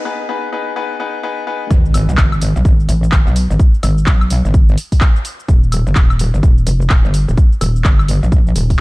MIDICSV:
0, 0, Header, 1, 5, 480
1, 0, Start_track
1, 0, Tempo, 472441
1, 1733, Time_signature, 4, 2, 24, 8
1, 8944, End_track
2, 0, Start_track
2, 0, Title_t, "Grand piano"
2, 0, Program_c, 0, 0
2, 53, Note_on_c, 0, 59, 85
2, 53, Note_on_c, 0, 63, 75
2, 53, Note_on_c, 0, 68, 74
2, 53, Note_on_c, 0, 71, 94
2, 251, Note_off_c, 0, 59, 0
2, 251, Note_off_c, 0, 68, 0
2, 251, Note_off_c, 0, 71, 0
2, 252, Note_off_c, 0, 63, 0
2, 293, Note_on_c, 0, 59, 82
2, 293, Note_on_c, 0, 63, 79
2, 293, Note_on_c, 0, 68, 78
2, 293, Note_on_c, 0, 71, 91
2, 491, Note_off_c, 0, 63, 0
2, 492, Note_off_c, 0, 59, 0
2, 492, Note_off_c, 0, 68, 0
2, 492, Note_off_c, 0, 71, 0
2, 533, Note_on_c, 0, 59, 82
2, 533, Note_on_c, 0, 63, 76
2, 533, Note_on_c, 0, 68, 81
2, 533, Note_on_c, 0, 71, 89
2, 732, Note_off_c, 0, 59, 0
2, 732, Note_off_c, 0, 63, 0
2, 732, Note_off_c, 0, 68, 0
2, 732, Note_off_c, 0, 71, 0
2, 773, Note_on_c, 0, 59, 87
2, 773, Note_on_c, 0, 63, 74
2, 773, Note_on_c, 0, 68, 78
2, 773, Note_on_c, 0, 71, 91
2, 971, Note_off_c, 0, 59, 0
2, 971, Note_off_c, 0, 63, 0
2, 971, Note_off_c, 0, 68, 0
2, 971, Note_off_c, 0, 71, 0
2, 1013, Note_on_c, 0, 59, 87
2, 1013, Note_on_c, 0, 63, 81
2, 1013, Note_on_c, 0, 68, 82
2, 1013, Note_on_c, 0, 71, 96
2, 1212, Note_off_c, 0, 59, 0
2, 1212, Note_off_c, 0, 63, 0
2, 1212, Note_off_c, 0, 68, 0
2, 1212, Note_off_c, 0, 71, 0
2, 1253, Note_on_c, 0, 59, 89
2, 1253, Note_on_c, 0, 63, 85
2, 1253, Note_on_c, 0, 68, 82
2, 1253, Note_on_c, 0, 71, 97
2, 1452, Note_off_c, 0, 59, 0
2, 1452, Note_off_c, 0, 63, 0
2, 1452, Note_off_c, 0, 68, 0
2, 1452, Note_off_c, 0, 71, 0
2, 1493, Note_on_c, 0, 59, 87
2, 1493, Note_on_c, 0, 63, 75
2, 1493, Note_on_c, 0, 68, 72
2, 1493, Note_on_c, 0, 71, 90
2, 1692, Note_off_c, 0, 59, 0
2, 1692, Note_off_c, 0, 63, 0
2, 1692, Note_off_c, 0, 68, 0
2, 1692, Note_off_c, 0, 71, 0
2, 8944, End_track
3, 0, Start_track
3, 0, Title_t, "Wobble bass"
3, 0, Program_c, 1, 39
3, 1733, Note_on_c, 1, 32, 93
3, 2097, Note_off_c, 1, 32, 0
3, 2121, Note_on_c, 1, 35, 95
3, 2198, Note_off_c, 1, 35, 0
3, 2213, Note_on_c, 1, 32, 93
3, 2577, Note_off_c, 1, 32, 0
3, 2601, Note_on_c, 1, 35, 97
3, 2678, Note_off_c, 1, 35, 0
3, 2693, Note_on_c, 1, 32, 94
3, 2918, Note_off_c, 1, 32, 0
3, 2933, Note_on_c, 1, 33, 101
3, 3158, Note_off_c, 1, 33, 0
3, 3173, Note_on_c, 1, 32, 102
3, 3297, Note_off_c, 1, 32, 0
3, 3320, Note_on_c, 1, 35, 104
3, 3537, Note_off_c, 1, 35, 0
3, 3560, Note_on_c, 1, 32, 96
3, 3638, Note_off_c, 1, 32, 0
3, 3892, Note_on_c, 1, 32, 98
3, 4118, Note_off_c, 1, 32, 0
3, 4133, Note_on_c, 1, 35, 92
3, 4497, Note_off_c, 1, 35, 0
3, 4521, Note_on_c, 1, 32, 99
3, 4838, Note_off_c, 1, 32, 0
3, 5573, Note_on_c, 1, 27, 90
3, 5937, Note_off_c, 1, 27, 0
3, 5961, Note_on_c, 1, 31, 99
3, 6038, Note_off_c, 1, 31, 0
3, 6053, Note_on_c, 1, 27, 94
3, 6417, Note_off_c, 1, 27, 0
3, 6441, Note_on_c, 1, 31, 100
3, 6518, Note_off_c, 1, 31, 0
3, 6533, Note_on_c, 1, 27, 98
3, 6758, Note_off_c, 1, 27, 0
3, 6773, Note_on_c, 1, 29, 102
3, 6998, Note_off_c, 1, 29, 0
3, 7013, Note_on_c, 1, 27, 102
3, 7137, Note_off_c, 1, 27, 0
3, 7161, Note_on_c, 1, 31, 94
3, 7377, Note_off_c, 1, 31, 0
3, 7401, Note_on_c, 1, 27, 99
3, 7478, Note_off_c, 1, 27, 0
3, 7734, Note_on_c, 1, 27, 97
3, 7959, Note_off_c, 1, 27, 0
3, 7973, Note_on_c, 1, 31, 90
3, 8337, Note_off_c, 1, 31, 0
3, 8361, Note_on_c, 1, 34, 92
3, 8678, Note_off_c, 1, 34, 0
3, 8693, Note_on_c, 1, 27, 100
3, 8918, Note_off_c, 1, 27, 0
3, 8944, End_track
4, 0, Start_track
4, 0, Title_t, "Impact"
4, 0, Program_c, 2, 103
4, 1733, Note_on_c, 2, 60, 76
4, 3653, Note_off_c, 2, 60, 0
4, 8944, End_track
5, 0, Start_track
5, 0, Title_t, "Drums"
5, 1733, Note_on_c, 9, 36, 114
5, 1736, Note_on_c, 9, 82, 49
5, 1834, Note_off_c, 9, 36, 0
5, 1837, Note_off_c, 9, 82, 0
5, 1883, Note_on_c, 9, 82, 24
5, 1973, Note_on_c, 9, 46, 105
5, 1973, Note_on_c, 9, 76, 62
5, 1976, Note_off_c, 9, 82, 0
5, 1976, Note_on_c, 9, 82, 81
5, 2075, Note_off_c, 9, 46, 0
5, 2075, Note_off_c, 9, 76, 0
5, 2077, Note_off_c, 9, 82, 0
5, 2123, Note_on_c, 9, 82, 35
5, 2208, Note_on_c, 9, 39, 127
5, 2213, Note_on_c, 9, 36, 115
5, 2216, Note_off_c, 9, 82, 0
5, 2216, Note_on_c, 9, 82, 50
5, 2310, Note_off_c, 9, 39, 0
5, 2314, Note_off_c, 9, 36, 0
5, 2317, Note_off_c, 9, 82, 0
5, 2361, Note_on_c, 9, 76, 81
5, 2363, Note_on_c, 9, 82, 23
5, 2453, Note_on_c, 9, 46, 108
5, 2456, Note_off_c, 9, 82, 0
5, 2456, Note_on_c, 9, 82, 90
5, 2462, Note_off_c, 9, 76, 0
5, 2555, Note_off_c, 9, 46, 0
5, 2557, Note_off_c, 9, 82, 0
5, 2604, Note_on_c, 9, 82, 35
5, 2693, Note_on_c, 9, 36, 120
5, 2696, Note_off_c, 9, 82, 0
5, 2696, Note_on_c, 9, 82, 48
5, 2794, Note_off_c, 9, 36, 0
5, 2797, Note_off_c, 9, 82, 0
5, 2843, Note_on_c, 9, 82, 22
5, 2933, Note_on_c, 9, 46, 105
5, 2936, Note_off_c, 9, 82, 0
5, 2936, Note_on_c, 9, 82, 84
5, 3035, Note_off_c, 9, 46, 0
5, 3037, Note_off_c, 9, 82, 0
5, 3084, Note_on_c, 9, 82, 35
5, 3168, Note_on_c, 9, 39, 124
5, 3173, Note_on_c, 9, 36, 115
5, 3173, Note_on_c, 9, 76, 81
5, 3176, Note_off_c, 9, 82, 0
5, 3176, Note_on_c, 9, 82, 48
5, 3270, Note_off_c, 9, 39, 0
5, 3274, Note_off_c, 9, 36, 0
5, 3275, Note_off_c, 9, 76, 0
5, 3277, Note_off_c, 9, 82, 0
5, 3323, Note_on_c, 9, 82, 24
5, 3413, Note_on_c, 9, 46, 103
5, 3415, Note_off_c, 9, 82, 0
5, 3415, Note_on_c, 9, 82, 86
5, 3514, Note_off_c, 9, 46, 0
5, 3517, Note_off_c, 9, 82, 0
5, 3563, Note_on_c, 9, 82, 35
5, 3653, Note_on_c, 9, 36, 122
5, 3655, Note_off_c, 9, 82, 0
5, 3655, Note_on_c, 9, 82, 45
5, 3754, Note_off_c, 9, 36, 0
5, 3756, Note_off_c, 9, 82, 0
5, 3802, Note_on_c, 9, 82, 23
5, 3892, Note_on_c, 9, 46, 108
5, 3892, Note_on_c, 9, 76, 60
5, 3895, Note_off_c, 9, 82, 0
5, 3895, Note_on_c, 9, 82, 78
5, 3994, Note_off_c, 9, 46, 0
5, 3994, Note_off_c, 9, 76, 0
5, 3996, Note_off_c, 9, 82, 0
5, 4043, Note_on_c, 9, 82, 35
5, 4127, Note_on_c, 9, 39, 127
5, 4133, Note_on_c, 9, 36, 124
5, 4135, Note_off_c, 9, 82, 0
5, 4135, Note_on_c, 9, 82, 46
5, 4229, Note_off_c, 9, 39, 0
5, 4234, Note_off_c, 9, 36, 0
5, 4236, Note_off_c, 9, 82, 0
5, 4280, Note_on_c, 9, 76, 76
5, 4282, Note_on_c, 9, 82, 22
5, 4372, Note_on_c, 9, 46, 111
5, 4375, Note_off_c, 9, 82, 0
5, 4375, Note_on_c, 9, 82, 82
5, 4382, Note_off_c, 9, 76, 0
5, 4474, Note_off_c, 9, 46, 0
5, 4476, Note_off_c, 9, 82, 0
5, 4523, Note_on_c, 9, 82, 33
5, 4613, Note_on_c, 9, 36, 127
5, 4615, Note_off_c, 9, 82, 0
5, 4615, Note_on_c, 9, 82, 46
5, 4714, Note_off_c, 9, 36, 0
5, 4716, Note_off_c, 9, 82, 0
5, 4762, Note_on_c, 9, 82, 22
5, 4852, Note_on_c, 9, 46, 104
5, 4855, Note_off_c, 9, 82, 0
5, 4855, Note_on_c, 9, 82, 77
5, 4954, Note_off_c, 9, 46, 0
5, 4956, Note_off_c, 9, 82, 0
5, 5000, Note_on_c, 9, 36, 62
5, 5000, Note_on_c, 9, 46, 69
5, 5002, Note_on_c, 9, 82, 35
5, 5088, Note_on_c, 9, 39, 127
5, 5093, Note_off_c, 9, 36, 0
5, 5093, Note_on_c, 9, 36, 126
5, 5093, Note_on_c, 9, 76, 75
5, 5095, Note_off_c, 9, 82, 0
5, 5095, Note_on_c, 9, 82, 47
5, 5102, Note_off_c, 9, 46, 0
5, 5190, Note_off_c, 9, 39, 0
5, 5194, Note_off_c, 9, 36, 0
5, 5194, Note_off_c, 9, 76, 0
5, 5197, Note_off_c, 9, 82, 0
5, 5243, Note_on_c, 9, 82, 23
5, 5333, Note_on_c, 9, 46, 111
5, 5335, Note_off_c, 9, 82, 0
5, 5335, Note_on_c, 9, 82, 84
5, 5434, Note_off_c, 9, 46, 0
5, 5437, Note_off_c, 9, 82, 0
5, 5483, Note_on_c, 9, 82, 33
5, 5573, Note_on_c, 9, 36, 118
5, 5575, Note_off_c, 9, 82, 0
5, 5575, Note_on_c, 9, 82, 46
5, 5674, Note_off_c, 9, 36, 0
5, 5677, Note_off_c, 9, 82, 0
5, 5723, Note_on_c, 9, 82, 22
5, 5813, Note_on_c, 9, 46, 106
5, 5813, Note_on_c, 9, 76, 59
5, 5815, Note_off_c, 9, 82, 0
5, 5815, Note_on_c, 9, 82, 75
5, 5914, Note_off_c, 9, 46, 0
5, 5914, Note_off_c, 9, 76, 0
5, 5917, Note_off_c, 9, 82, 0
5, 5963, Note_on_c, 9, 82, 34
5, 6048, Note_on_c, 9, 39, 122
5, 6053, Note_on_c, 9, 36, 127
5, 6055, Note_off_c, 9, 82, 0
5, 6055, Note_on_c, 9, 82, 44
5, 6150, Note_off_c, 9, 39, 0
5, 6155, Note_off_c, 9, 36, 0
5, 6157, Note_off_c, 9, 82, 0
5, 6201, Note_on_c, 9, 76, 76
5, 6203, Note_on_c, 9, 82, 21
5, 6293, Note_on_c, 9, 46, 120
5, 6295, Note_off_c, 9, 82, 0
5, 6295, Note_on_c, 9, 82, 80
5, 6302, Note_off_c, 9, 76, 0
5, 6394, Note_off_c, 9, 46, 0
5, 6397, Note_off_c, 9, 82, 0
5, 6443, Note_on_c, 9, 82, 31
5, 6533, Note_on_c, 9, 36, 124
5, 6536, Note_off_c, 9, 82, 0
5, 6536, Note_on_c, 9, 82, 44
5, 6635, Note_off_c, 9, 36, 0
5, 6637, Note_off_c, 9, 82, 0
5, 6683, Note_on_c, 9, 82, 22
5, 6773, Note_on_c, 9, 46, 113
5, 6776, Note_off_c, 9, 82, 0
5, 6776, Note_on_c, 9, 82, 78
5, 6875, Note_off_c, 9, 46, 0
5, 6877, Note_off_c, 9, 82, 0
5, 6923, Note_on_c, 9, 82, 32
5, 7008, Note_on_c, 9, 39, 127
5, 7013, Note_on_c, 9, 36, 125
5, 7013, Note_on_c, 9, 76, 78
5, 7016, Note_off_c, 9, 82, 0
5, 7016, Note_on_c, 9, 82, 45
5, 7110, Note_off_c, 9, 39, 0
5, 7115, Note_off_c, 9, 36, 0
5, 7115, Note_off_c, 9, 76, 0
5, 7117, Note_off_c, 9, 82, 0
5, 7163, Note_on_c, 9, 82, 23
5, 7253, Note_on_c, 9, 46, 106
5, 7256, Note_off_c, 9, 82, 0
5, 7256, Note_on_c, 9, 82, 74
5, 7355, Note_off_c, 9, 46, 0
5, 7357, Note_off_c, 9, 82, 0
5, 7403, Note_on_c, 9, 82, 33
5, 7493, Note_on_c, 9, 36, 118
5, 7496, Note_off_c, 9, 82, 0
5, 7496, Note_on_c, 9, 82, 43
5, 7595, Note_off_c, 9, 36, 0
5, 7598, Note_off_c, 9, 82, 0
5, 7644, Note_on_c, 9, 82, 20
5, 7734, Note_on_c, 9, 46, 112
5, 7734, Note_on_c, 9, 76, 58
5, 7736, Note_off_c, 9, 82, 0
5, 7736, Note_on_c, 9, 82, 76
5, 7835, Note_off_c, 9, 46, 0
5, 7835, Note_off_c, 9, 76, 0
5, 7838, Note_off_c, 9, 82, 0
5, 7884, Note_on_c, 9, 82, 31
5, 7969, Note_on_c, 9, 39, 119
5, 7973, Note_on_c, 9, 36, 124
5, 7976, Note_off_c, 9, 82, 0
5, 7976, Note_on_c, 9, 82, 43
5, 8071, Note_off_c, 9, 39, 0
5, 8075, Note_off_c, 9, 36, 0
5, 8078, Note_off_c, 9, 82, 0
5, 8121, Note_on_c, 9, 76, 76
5, 8124, Note_on_c, 9, 82, 21
5, 8214, Note_on_c, 9, 46, 116
5, 8216, Note_off_c, 9, 82, 0
5, 8216, Note_on_c, 9, 82, 78
5, 8223, Note_off_c, 9, 76, 0
5, 8315, Note_off_c, 9, 46, 0
5, 8318, Note_off_c, 9, 82, 0
5, 8364, Note_on_c, 9, 82, 30
5, 8453, Note_on_c, 9, 36, 120
5, 8456, Note_off_c, 9, 82, 0
5, 8456, Note_on_c, 9, 82, 43
5, 8555, Note_off_c, 9, 36, 0
5, 8557, Note_off_c, 9, 82, 0
5, 8603, Note_on_c, 9, 82, 21
5, 8693, Note_on_c, 9, 46, 109
5, 8695, Note_off_c, 9, 82, 0
5, 8695, Note_on_c, 9, 82, 75
5, 8794, Note_off_c, 9, 46, 0
5, 8797, Note_off_c, 9, 82, 0
5, 8841, Note_on_c, 9, 36, 64
5, 8841, Note_on_c, 9, 46, 64
5, 8844, Note_on_c, 9, 82, 34
5, 8942, Note_off_c, 9, 36, 0
5, 8943, Note_off_c, 9, 46, 0
5, 8944, Note_off_c, 9, 82, 0
5, 8944, End_track
0, 0, End_of_file